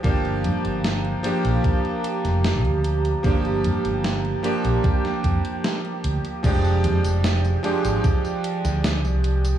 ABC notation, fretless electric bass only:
X:1
M:4/4
L:1/16
Q:1/4=75
K:Fdor
V:1 name="Fretless electric bass" clef=bass
G,,,2 G,, G,,,2 z2 B,,, z3 F,,,2 D,,2 z | G,,,2 G,, G,,,2 z2 B,,, z2 F,, z3 D,, z | F,,,2 F,, F,,,2 z2 A,,, z3 D,,2 C,,2 z |]